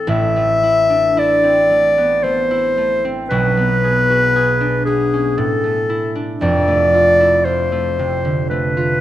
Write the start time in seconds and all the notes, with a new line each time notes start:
Already playing: E3 C4 E4 A4
0.07 A1 A2 E5
0.36 A3
0.63 E4
0.90 D4
1.17 E4 D5
1.43 C4
1.70 A3
1.98 B3
2.23 A3 C5
2.51 E4
2.78 A3
3.05 C4
3.30 B1 B2 B4
3.57 B3
3.84 G#4
4.10 F#4
4.36 G#4
4.61 D4
4.85 B3 G#4
5.13 C#4
5.38 A2 A4
5.64 A3
5.89 E4
6.15 D4
6.41 F1 F2 D5
6.68 A3
6.94 F4
7.20 E4
7.45 F4 C5
7.72 A3
7.99 C3
8.25 D3
8.50 A3 B4
8.77 F4